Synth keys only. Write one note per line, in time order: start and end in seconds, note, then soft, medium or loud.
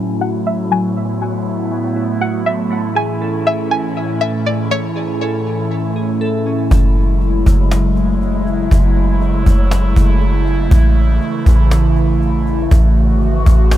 0.00 0.70 F#3 medium
0.00 0.95 E4 medium
0.00 0.20 F#4 medium
0.21 1.20 F#4 medium
0.46 1.96 A3 medium
0.71 1.70 F#3 loud
0.97 1.95 E4 medium
1.22 2.20 F#4 medium
1.71 2.71 F#3 medium
1.96 2.71 E4 medium
2.21 2.71 F#4 medium
2.46 2.69 A3 medium
2.70 3.70 A3 medium
2.95 3.95 G#4 medium
3.22 4.20 A4 medium
3.71 4.70 A3 medium
3.96 4.94 G#4 medium
4.21 5.20 A4 medium
4.46 5.96 C#4 medium
4.71 5.70 A3 medium
4.96 5.95 G#4 medium
5.21 6.20 A4 medium
5.71 6.71 A3 medium
5.96 6.71 G#4 medium
6.21 6.71 A4 loud
6.47 6.71 C#4 medium